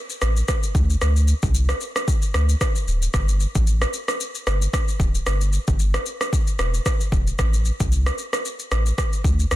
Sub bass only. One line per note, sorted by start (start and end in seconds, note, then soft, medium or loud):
0.22 0.43 A1 medium
0.75 0.95 D2 loud
1.02 1.34 D2 loud
1.43 1.73 C2 medium
2.34 2.55 D2 medium
2.87 3.08 D1 medium
3.14 3.46 G1 loud
3.55 3.85 A1 medium
4.47 4.67 G1 medium
5.00 5.20 D1 medium
5.26 5.58 G1 loud
5.68 5.98 G1 medium
6.59 6.80 E1 medium
7.12 7.33 E1 medium
7.39 7.71 A1 loud
7.80 8.10 C2 medium
8.71 8.92 A1 medium
9.24 9.45 D2 loud
9.51 9.56 D2 loud